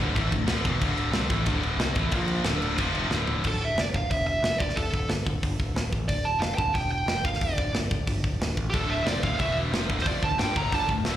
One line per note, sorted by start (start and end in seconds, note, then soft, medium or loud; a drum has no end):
0.00 0.14 D1 loud
0.00 0.13 D2 loud
0.00 0.12 A2 loud
0.00 0.14 D3 loud
0.13 0.31 A1 loud
0.13 0.30 A2 loud
0.13 0.31 E3 loud
0.13 0.31 A3 loud
0.13 kick loud
0.13 crash medium
0.31 0.46 D1 medium
0.31 0.45 D2 medium
0.31 0.45 A2 medium
0.31 kick loud
0.31 crash medium
0.46 0.63 D1 loud
0.46 0.63 D2 medium
0.46 0.63 A2 loud
0.46 0.64 D3 loud
0.46 snare loud
0.46 crash medium
0.63 0.80 E1 loud
0.63 0.80 E2 loud
0.63 0.80 B2 loud
0.63 0.81 E3 loud
0.63 kick loud
0.63 crash medium
0.81 1.11 D1 loud
0.81 1.13 D2 loud
0.81 1.13 A2 loud
0.81 1.13 D3 loud
0.81 kick loud
0.81 crash medium
0.97 crash medium
1.12 1.28 C2 loud
1.12 1.30 C3 medium
1.12 1.30 G3 loud
1.12 1.30 C4 loud
1.12 snare loud
1.12 crash medium
1.29 1.45 A1 loud
1.29 1.46 A2 loud
1.29 1.47 E3 loud
1.29 1.47 A3 loud
1.29 kick loud
1.29 crash medium
1.46 1.76 D1 medium
1.46 1.79 D2 medium
1.46 1.79 A2 loud
1.46 1.80 D3 loud
1.46 kick loud
1.46 crash medium
1.63 crash medium
1.77 1.94 C2 medium
1.77 1.96 C3 medium
1.77 1.96 G3 loud
1.77 snare loud
1.77 crash medium
1.81 1.97 C4 loud
1.95 2.11 A1 loud
1.95 2.12 A2 loud
1.95 2.13 E3 loud
1.95 2.13 A3 loud
1.95 kick loud
1.95 crash medium
2.11 2.42 A#1 loud
2.11 2.45 A#2 loud
2.11 2.46 F3 loud
2.11 2.46 A#3 loud
2.11 kick loud
2.11 crash medium
2.28 crash medium
2.43 2.75 D1 medium
2.43 2.79 D2 medium
2.43 2.80 A2 loud
2.43 2.80 D3 medium
2.43 snare loud
2.43 crash medium
2.62 crash medium
2.78 3.09 F1 medium
2.78 3.11 F2 loud
2.78 3.12 C3 loud
2.78 3.12 F3 loud
2.78 kick loud
2.78 crash medium
2.95 crash medium
3.09 3.41 D1 medium
3.09 3.44 D2 medium
3.09 3.45 A2 medium
3.09 snare medium
3.13 3.45 D3 loud
3.28 floor tom medium
3.44 3.74 D1 medium
3.44 3.63 A4 medium
3.44 kick loud
3.44 crash loud
3.65 3.80 E5 medium
3.75 3.91 F1 medium
3.75 snare loud
3.75 open hi-hat medium
3.80 3.85 D5 medium
3.94 4.09 D1 medium
3.94 4.11 F5 loud
3.94 kick loud
4.10 4.41 E1 medium
4.10 4.26 E5 medium
4.10 kick loud
4.10 open hi-hat medium
4.27 4.61 E5 loud
4.41 4.58 F1 medium
4.41 snare loud
4.41 open hi-hat medium
4.58 4.75 D1 loud
4.58 4.76 D5 medium
4.58 kick loud
4.69 snare soft
4.76 4.92 F1 medium
4.76 5.07 A4 medium
4.76 kick loud
4.76 open hi-hat medium
4.93 5.07 D1 medium
4.93 kick medium
5.08 5.24 G1 medium
5.08 snare loud
5.08 open hi-hat medium
5.26 5.41 D1 medium
5.26 kick loud
5.42 5.58 G1 loud
5.42 kick loud
5.42 open hi-hat medium
5.59 5.74 D1 medium
5.59 kick medium
5.74 5.91 D1 loud
5.74 snare loud
5.74 open hi-hat medium
5.92 6.07 A1 medium
5.92 kick medium
6.08 6.38 D1 medium
6.08 6.26 D5 medium
6.08 kick loud
6.08 open hi-hat medium
6.25 6.41 A5 loud
6.39 6.56 F1 medium
6.39 6.52 F5 loud
6.39 snare loud
6.39 open hi-hat medium
6.55 6.73 D1 medium
6.55 6.59 G5 medium
6.55 6.75 A5 medium
6.55 kick loud
6.74 7.05 E1 medium
6.74 6.90 G5 loud
6.74 kick loud
6.74 open hi-hat medium
6.91 7.22 G5 medium
7.06 7.23 F1 medium
7.06 snare loud
7.06 open hi-hat medium
7.24 7.40 D1 medium
7.24 7.42 F5 medium
7.24 kick loud
7.33 snare soft
7.40 7.56 F1 medium
7.40 7.75 D5 medium
7.40 kick loud
7.40 open hi-hat medium
7.57 7.71 D1 medium
7.57 kick loud
7.72 7.89 G1 medium
7.72 snare loud
7.72 open hi-hat medium
7.90 8.06 D1 medium
7.90 kick loud
8.07 8.22 G1 medium
8.07 kick loud
8.07 open hi-hat medium
8.23 8.39 D1 medium
8.23 kick medium
8.40 8.55 D1 medium
8.40 snare loud
8.40 open hi-hat medium
8.50 snare soft
8.56 8.72 A1 medium
8.56 kick medium
8.70 9.05 D1 medium
8.70 9.05 D2 medium
8.70 9.05 A2 medium
8.70 8.74 G4 medium
8.70 8.91 A4 medium
8.70 kick loud
8.70 open hi-hat medium
8.75 9.06 D3 medium
8.90 9.07 E5 medium
9.05 9.21 F1 medium
9.05 9.21 F2 medium
9.05 9.22 C3 medium
9.05 9.22 F3 loud
9.05 9.24 D5 medium
9.05 snare loud
9.05 open hi-hat medium
9.22 9.38 D1 loud
9.22 9.38 D2 loud
9.22 9.38 A2 loud
9.22 9.39 D3 medium
9.22 9.39 F5 medium
9.22 kick loud
9.38 9.70 E1 medium
9.38 9.71 E2 loud
9.38 9.72 B2 loud
9.38 9.72 E3 loud
9.38 9.55 E5 medium
9.38 kick medium
9.38 open hi-hat soft
9.71 9.87 F1 loud
9.71 9.88 F2 medium
9.71 9.89 C3 medium
9.71 9.89 F3 loud
9.71 snare loud
9.71 open hi-hat medium
9.89 10.05 D1 loud
9.89 10.06 D2 loud
9.89 10.06 A2 medium
9.89 10.06 D3 loud
9.89 kick loud
9.99 10.07 C5 medium
9.99 snare soft
10.06 10.21 F1 medium
10.06 10.23 F2 medium
10.06 10.23 C3 medium
10.06 10.23 F3 loud
10.06 10.24 D5 medium
10.06 kick loud
10.06 open hi-hat medium
10.22 10.37 D1 medium
10.22 10.37 D2 medium
10.22 10.36 A2 medium
10.22 10.39 A5 medium
10.22 kick loud
10.38 10.54 G1 medium
10.38 10.54 G2 loud
10.38 10.55 D3 loud
10.38 10.56 G3 medium
10.38 10.57 G5 medium
10.38 snare loud
10.38 open hi-hat medium
10.55 10.71 D1 medium
10.55 10.71 D2 loud
10.55 10.72 A2 loud
10.55 10.71 D3 loud
10.55 10.74 A#5 loud
10.55 kick loud
10.71 10.87 G1 medium
10.71 10.89 G2 medium
10.71 10.89 D3 loud
10.71 10.89 G3 loud
10.71 10.89 A5 medium
10.71 kick loud
10.71 open hi-hat medium
10.88 11.04 D1 medium
10.88 11.03 D2 medium
10.88 11.03 A2 medium
10.88 kick medium
11.04 11.16 D1 medium
11.04 11.16 D2 medium
11.04 11.16 A2 medium
11.04 11.16 D3 medium
11.04 snare loud
11.04 open hi-hat medium